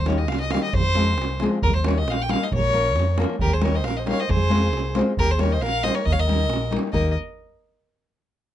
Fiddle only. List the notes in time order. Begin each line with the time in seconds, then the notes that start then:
0.08 C#5
0.18 D#5
0.28 F5
0.40 D#5
0.51 F5
0.64 D#5
0.73 C5
1.63 A#4
1.76 C5
1.87 C#5
1.98 D#5
2.10 F5
2.22 G5
2.31 F5
2.44 D#5
2.54 C#5
3.41 A#4
3.54 C5
3.64 C#5
3.76 D#5
3.85 F5
3.97 D#5
4.09 F5
4.20 D#5
4.30 C5
5.19 A#4
5.31 C5
5.41 C#5
5.52 D#5
5.62 F5
5.84 D#5
5.95 C#5
6.05 D#5
6.13 F5
6.20 D#5
6.93 D#5